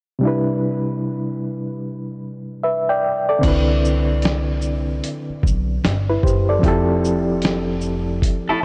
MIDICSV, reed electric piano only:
0, 0, Header, 1, 2, 480
1, 0, Start_track
1, 0, Key_signature, 0, "major"
1, 0, Tempo, 800000
1, 138, Time_signature, 4, 2, 24, 8
1, 5189, End_track
2, 0, Start_track
2, 0, Title_t, "Reed electric piano"
2, 0, Program_c, 0, 4
2, 114, Note_on_c, 0, 48, 64
2, 128, Note_on_c, 0, 55, 64
2, 140, Note_on_c, 0, 62, 57
2, 153, Note_on_c, 0, 64, 66
2, 165, Note_on_c, 0, 71, 70
2, 233, Control_c, 0, 64, 127
2, 1328, Note_off_c, 0, 71, 0
2, 1581, Note_on_c, 0, 76, 57
2, 1584, Note_on_c, 0, 71, 51
2, 1727, Note_off_c, 0, 76, 0
2, 1729, Note_off_c, 0, 71, 0
2, 1735, Note_on_c, 0, 79, 58
2, 1738, Note_on_c, 0, 74, 52
2, 1962, Note_off_c, 0, 79, 0
2, 1964, Note_off_c, 0, 74, 0
2, 1973, Note_on_c, 0, 74, 59
2, 1977, Note_on_c, 0, 69, 50
2, 2022, Note_off_c, 0, 48, 0
2, 2029, Note_off_c, 0, 55, 0
2, 2033, Note_on_c, 0, 50, 65
2, 2035, Note_off_c, 0, 62, 0
2, 2042, Note_off_c, 0, 64, 0
2, 2046, Note_on_c, 0, 60, 64
2, 2059, Note_on_c, 0, 62, 60
2, 2067, Control_c, 0, 64, 0
2, 2073, Note_on_c, 0, 64, 63
2, 2086, Note_on_c, 0, 71, 73
2, 2156, Control_c, 0, 64, 127
2, 2201, Note_off_c, 0, 74, 0
2, 2203, Note_off_c, 0, 69, 0
2, 3242, Note_off_c, 0, 64, 0
2, 3248, Note_off_c, 0, 71, 0
2, 3657, Note_on_c, 0, 71, 59
2, 3659, Note_on_c, 0, 64, 47
2, 3701, Note_off_c, 0, 50, 0
2, 3708, Note_off_c, 0, 60, 0
2, 3715, Note_off_c, 0, 62, 0
2, 3736, Note_off_c, 0, 71, 0
2, 3737, Note_off_c, 0, 64, 0
2, 3742, Note_on_c, 0, 72, 58
2, 3745, Note_on_c, 0, 67, 53
2, 3887, Note_off_c, 0, 72, 0
2, 3889, Note_off_c, 0, 67, 0
2, 3894, Note_on_c, 0, 74, 61
2, 3899, Note_on_c, 0, 69, 52
2, 3954, Note_on_c, 0, 53, 71
2, 3967, Note_on_c, 0, 60, 65
2, 3981, Note_on_c, 0, 64, 66
2, 3985, Control_c, 0, 64, 0
2, 3994, Note_on_c, 0, 67, 68
2, 4000, Note_off_c, 0, 69, 0
2, 4007, Note_on_c, 0, 69, 77
2, 4078, Control_c, 0, 64, 127
2, 4122, Note_off_c, 0, 74, 0
2, 5189, Note_off_c, 0, 53, 0
2, 5189, Note_off_c, 0, 60, 0
2, 5189, Note_off_c, 0, 64, 0
2, 5189, Note_off_c, 0, 67, 0
2, 5189, Note_off_c, 0, 69, 0
2, 5189, End_track
0, 0, End_of_file